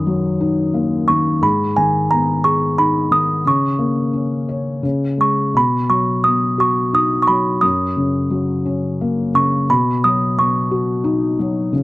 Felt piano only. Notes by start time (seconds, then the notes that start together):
Already playing: F#2 D#3
0.07 F#3
0.40 D#4
0.74 A#3
1.09 D#3
1.42 G#2
1.78 D#3
2.12 B3
2.44 G#4
2.79 D#4
3.11 D#3
3.45 C#3
3.79 A#3
4.13 C#4
4.49 C#5
4.83 C#3
5.18 G#3
5.54 B2
5.90 F#3
6.25 B3
6.58 F#4
6.93 D#4
7.28 F#3
7.62 F#2
7.97 C#3
8.30 F#3
8.66 C#4
9.01 A#3
9.34 C#3
9.70 B2
10.05 F#3
10.38 B3
10.71 F#4
11.04 D#4
11.39 F#3
11.73 C#3